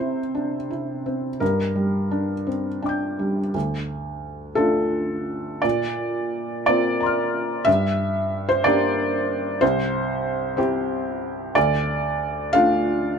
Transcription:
Already playing: C3 C4 C5
0.00 E4
0.35 D4
0.71 E4
1.06 C4
1.40 G2 A#4
1.76 G3
2.11 D4
2.47 C4
2.82 D4 G5 D6
2.89 G6
3.19 G3
3.54 D2
4.55 A3 D4 F4 A4
5.62 A#2 D5
6.66 A#3 C4 F4 D5
7.00 A#5 C6
7.06 F6
7.65 G2 E5
8.49 C5
8.64 A#3 D4 G4 D5
9.61 C2 C5
10.57 C4 E4 G4
11.55 D2 D5
12.53 A3 D4 F4 F5

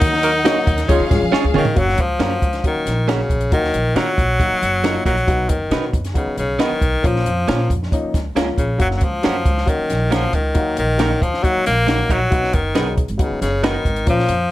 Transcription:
Already playing: D#2 F#3 A#3 D#4 F#4 A#4 F#5
0.02 kick, closed hi-hat
0.13 snare
0.23 D#4 F#4 A#4, closed hi-hat
0.44 F#3 A#3 D#4 F#4 A#4 C#5 D#5, snare, closed hi-hat
0.67 D#2, kick, closed hi-hat
0.78 snare, closed hi-hat
0.87 C#2 F3 G#3 C#4 F4 G#4 C#5 F5, kick, closed hi-hat
1.00 C#3
1.09 G#2 F3 G#3 C#4 F4 G#4, kick, snare, closed hi-hat
1.21 F2
1.30 F3 G#3 C#4 F4 G#4, muted upright bass stroke, snare
1.34 C#5
1.44 C#2
1.54 C#3 D#3 C#4 F4 G#4 C#5, mid tom
1.65 floor tom
1.75 F#1 F#3 A#3 C#4 F#4, kick, closed hi-hat
1.79 F#3
1.89 snare
1.98 C#2 F3, kick, closed hi-hat
2.19 F#2 F#3 A#3 C#4 F#4 A#4, snare, closed hi-hat
2.42 C#2, kick, closed hi-hat
2.53 snare, closed hi-hat
2.64 D#3 F#3 A#3 C#4 F#4, kick, closed hi-hat
2.75 muted upright bass stroke
2.86 A#1, snare, closed hi-hat
3.07 C#3 F#3 A#3 C#4 F#4 A#4, snare, closed hi-hat
3.30 A#1, kick, closed hi-hat
3.41 closed hi-hat
3.52 D#2 D#3 F#3 A#3 D#4 F#4, kick, closed hi-hat
3.64 snare
3.74 A#1, closed hi-hat
3.95 D#3 F#3 A#3 D#4 F4 F#4 A#4, snare, closed hi-hat
4.18 A#1, kick, closed hi-hat
4.39 F#3 A#3 D#4 F#4, kick, closed hi-hat
4.51 muted upright bass stroke
4.62 F#1, closed hi-hat
4.83 F#3 A#3 D#4 F4 F#4 A#4, snare, closed hi-hat
5.05 A#1 F#3 A#3 D#4 F#4 A#4, kick, closed hi-hat
5.17 closed hi-hat
5.27 B1 F#3 B3 D#4 F#4, kick, closed hi-hat
5.49 F#1 D#3, kick, closed hi-hat
5.70 B2 F#3 B3 D#4 F#4 B4, snare, closed hi-hat
5.93 F#1, kick, closed hi-hat
6.05 snare, closed hi-hat
6.14 C#3 F#3 B3 D#4 F#4, kick, closed hi-hat
6.26 muted upright bass stroke
6.37 B1 C#3, closed hi-hat
6.59 D#3 F#3 B3 D#4 F#4 B4, snare, closed hi-hat
6.71 muted upright bass stroke
6.81 B1, kick, closed hi-hat
7.02 A#1 F3 A#3 C#4 F4, kick, closed hi-hat
7.06 F3
7.16 snare
7.26 F2, closed hi-hat
7.47 A#2 F3 A#3 C#4 F4 A#4, snare, closed hi-hat
7.70 F2, kick, closed hi-hat
7.83 snare
7.91 F3 A#3 C#4 D#4, kick, closed hi-hat
8.03 muted upright bass stroke
8.14 C#2, kick, snare, closed hi-hat
8.35 C#2 F3 A#3 C#4 F4 A#4, snare, closed hi-hat
8.58 A#1 C#3, kick, closed hi-hat
8.78 F#1 F#3 A#3 C#4 F#4, kick, closed hi-hat
8.91 snare
8.97 F#3
9.01 C#2 F3, kick, closed hi-hat
9.22 F#2 F#3 A#3 C#4 F#4 A#4, snare, closed hi-hat
9.45 C#2, kick, closed hi-hat
9.57 snare
9.65 D#3 F#3 A#3 C#4 F#4, kick, closed hi-hat
9.79 muted upright bass stroke
9.90 A#1, snare, closed hi-hat
10.10 F3 F#3 A#3 C#4 F#4 A#4, snare, closed hi-hat
10.33 C#2 D#3, kick, closed hi-hat
10.54 D#2 F#3 A#3 D#4 F#4, kick, closed hi-hat
10.77 A#1 D#3, closed hi-hat
10.97 F#3 A#3 D#4 F#4, snare, closed hi-hat
11.01 A#4
11.22 D#2 F3, kick, closed hi-hat
11.34 snare
11.43 F#3 A#3 D#4 F#4, kick, closed hi-hat
11.56 muted upright bass stroke
11.66 A#1 A#3, snare, closed hi-hat
11.87 F#3 A#3 D#4 F#4 A#4, snare, closed hi-hat
12.09 A#1 F#3 A#3 D#4 F#4 A#4, kick, closed hi-hat
12.30 B1 F#3 B3 D#4 F#4, kick, closed hi-hat
12.44 snare
12.53 F#1 D#3, kick, closed hi-hat
12.75 B1 F#3 B3 D#4 F#4 G#4 B4, snare, closed hi-hat
12.98 kick, closed hi-hat
13.08 G#1, closed hi-hat
13.17 C#3 F#3 B3 D#4 F#4, kick, closed hi-hat
13.31 muted upright bass stroke
13.41 F#1 C#3, snare, closed hi-hat
13.62 D#3 F#3 B3 D#4 F#4 B4, snare, closed hi-hat
13.85 G#1, kick, closed hi-hat
13.96 closed hi-hat
14.06 A#1 F3 A#3 C#4 F4, kick, closed hi-hat
14.19 snare
14.29 F2, closed hi-hat

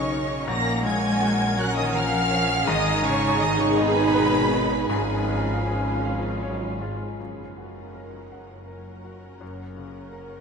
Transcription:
Already playing: B1 F#2 C#3 D#3 C#4 D#4 C#5 D#5 C#6
0.12 C#4
0.47 A#1 A#3 C#4 A#4 F#5 A#5 A#6
0.85 A#2 G#3 G#5 G#6
1.21 F#4
1.57 F#3 C#4 C#5 F#5 F#6
1.76 D#3 D#5 D#6
1.93 F3 A#4 F5
1.97 F6
2.31 C#4
2.66 G#1 G#2 D#3 D#4 G#4 D#5 G#5 D#6
3.03 C#3 D#3 C#5 C#6
3.40 D#3 G#4 D#5 D#6
3.59 C#3 C#5 C#6
3.77 B2 D#4 B4 D#5 G#5 B5
4.14 B4
4.53 D#4
4.88 G#2 F3 C#4 F4 G#4 F5 G#5
5.29 G#3
5.67 G#4
6.05 F3 F5
6.43 F#3 C#5
6.81 G#3 F4
7.19 F#1 F#2
7.55 C#4 F#4 A#4 F#5
7.95 A#4
8.31 F#1 F#2 F#5
8.67 C#4 A#4 F#5
9.04 F#4
9.41 F#1 F#2
9.76 C#3 C#4 A#4 F#5
10.13 A#4

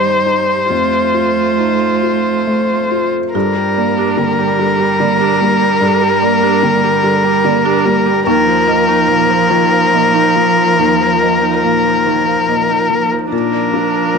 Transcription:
Already playing: G2 D#3 G3 D4 D#4 G4 C5
0.26 D#4
0.70 F2 A3 F4 A4
1.14 F4
1.59 D#4
2.03 F4
2.47 A3
2.91 F4
3.34 G2 D3 G3 D4 G4 A#4
3.56 G3 A#4
3.77 A#3 D5
3.98 D4 G4
4.17 D3 A#3 G5
4.38 G3
4.59 D3 G3 G4
4.80 G3 G5
5.00 D3 A#3 D5
5.20 D4 G4
5.40 G3 A#3
5.61 G3 A#4
5.81 G2 D3 G4
6.02 G3 A#4
6.22 A#3 D5
6.43 D4 G4
6.63 D3 A#3 G5
6.84 G3
7.03 D3 G3 G4
7.24 G3 G5
7.45 D3 A#3 D5
7.65 D4 G4
7.85 G3 A#3
8.06 G3 A#4
8.27 D#2 D#3 F3 D#4 F4 A#4
8.47 F3 A#4
8.67 A#3 D#5
8.88 D#4
9.08 A#2 A#3 F5
9.30 F3
9.50 D#3 F3 D#4
9.71 F3 F5
9.93 A#2 A#3 D#5
10.14 D#4
10.36 F3 A#3
10.57 F3 A#4
10.79 D#2 D#3 D#4
11.00 F3 A#4
11.21 A#3 D#5
11.42 D#4
11.64 A#2 A#3 F5
11.86 F3
12.06 D#3 F3 D#4
12.27 F3 F5
12.48 A#2 A#3 D#5
12.69 D#4
12.90 F3 A#3
13.12 F3 A#4
13.32 A#2 F3 D4 F4 A#4
13.53 D5
13.74 D4 F5
13.95 A#4
14.15 F3

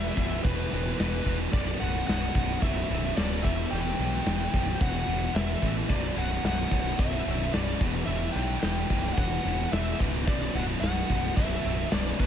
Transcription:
Already playing: E2 B2 E3 E5
0.17 B0 E2 B2 E3, kick
0.44 E1 E2 B2 E3 B4, kick, open hi-hat
0.72 E1 E2 B2 E3
0.98 E1 E2 B2 E3 B4, snare, open hi-hat
1.25 E1 E2 B2 E3, kick
1.30 E3
1.53 B0 B1 F#2 B2 D5, kick, open hi-hat
1.80 B0 B1 F#2 B2 F#5
2.07 B0 B1 F#2 B2 F#5, snare, open hi-hat
2.35 B0 B1 F#2 B2, kick
2.61 B0 B1 F#2 B2 E5, kick, open hi-hat
2.89 B0 B1 F#2 B2
3.16 D1 B1 F#2 B2 D5, snare, open hi-hat
3.43 E1 E2 B2 E3 E5, kick
3.71 E1 E2 B2 E3 G5, open hi-hat
3.98 B1 E2 B2 E3
4.25 E1 E2 B2 E3, snare, open hi-hat
4.52 B0 E2 B2 E3, kick
4.69 snare
4.80 E1 E2 B2 E3 F#5, kick, open hi-hat
5.07 E1 E2 B2 E3
5.34 E1 E2 B2 E3 E5, snare, open hi-hat
5.62 A1 E2 B2 E3, kick
5.87 B0 B1 F#2 B2 D5, kick, crash
6.15 B0 B1 F#2 B2 F#5
6.43 B0 B1 F#2 B2 F#5, snare, open hi-hat
6.59 snare
6.70 B0 B1 F#2 B2, kick
6.98 B0 B1 F#2 B2 E5, kick, open hi-hat
7.25 B0 B1 F#2 B2
7.53 B0 B1 F#2 B2 D5, snare, open hi-hat
7.80 E1 E2 B2 E3, kick
8.05 E1 E2 B2 E3 E5, open hi-hat
8.32 B1 E2 B2 E3 G5
8.60 E1 E2 B2 E3 G5, snare, open hi-hat
8.77 snare
8.89 B0 E2 B2 E3, kick
9.04 snare
9.14 E1 E2 B2 F#5, open hi-hat
9.18 E3, kick
9.42 E1 E2 B2 E3
9.71 E1 E2 B2 E3 E5, snare, open hi-hat
9.98 C#1 E2 B2 E3, kick
10.25 B0 B1 F#2 B2 D5, kick, open hi-hat
10.52 B0 B1 F#2 B2 F#5
10.80 B0 B1 F#2 B2 F#5, snare, open hi-hat
11.08 B0 B1 F#2 B2, kick
11.25 snare
11.36 B0 B1 F#2 B2 E5, kick, open hi-hat
11.63 B0 B1 F#2 B2
11.90 B0 B1 F#2 B2 D5, snare, open hi-hat
12.17 B0 B1 F#2 B2 B4, kick

